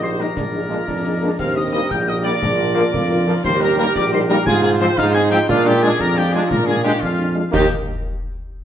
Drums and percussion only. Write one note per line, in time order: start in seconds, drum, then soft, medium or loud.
0.20 snare medium
0.37 concert bass drum loud
0.37 snare medium
0.71 snare medium
0.88 concert bass drum medium
0.88 snare medium
1.39 concert bass drum loud
1.39 snare medium
1.39 crash soft
1.91 concert bass drum medium
1.91 snare medium
2.25 snare medium
2.43 concert bass drum loud
2.43 snare loud
2.77 snare medium
2.94 concert bass drum medium
2.94 snare medium
3.44 concert bass drum loud
3.44 snare medium
3.44 crash soft
3.96 concert bass drum medium
3.96 snare medium
4.29 snare medium
4.47 concert bass drum loud
4.47 snare loud
4.80 snare medium
4.98 concert bass drum loud
4.98 snare medium
5.49 concert bass drum loud
5.49 snare medium
5.49 crash soft
6.00 concert bass drum medium
6.00 snare medium
6.34 snare medium
6.51 concert bass drum loud
6.51 snare medium
7.02 concert bass drum medium
7.02 snare medium
7.53 concert bass drum loud
7.53 snare loud
7.53 crash loud